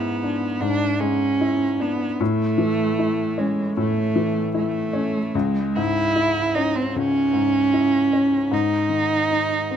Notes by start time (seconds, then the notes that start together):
Already playing: G#2 G#3 B3 E4
0.23 D4
0.61 G#2 D4
0.99 G#3 C#4
1.41 E4
1.80 B3 D4
2.20 A2 A3
2.58 E3
2.99 E4
3.38 G#3 C#4
3.77 A2 A3
4.16 E3
4.54 A3 E4
4.93 C#4
5.35 C#2 G#3
5.75 G#2 E4
6.16 E4
6.55 C#4 D#4
6.75 C4
6.96 C#2 C#4
7.33 G#2
7.73 E4
8.13 C#4
8.51 G#2 D#4
8.89 D#3
9.31 D#4
9.71 C4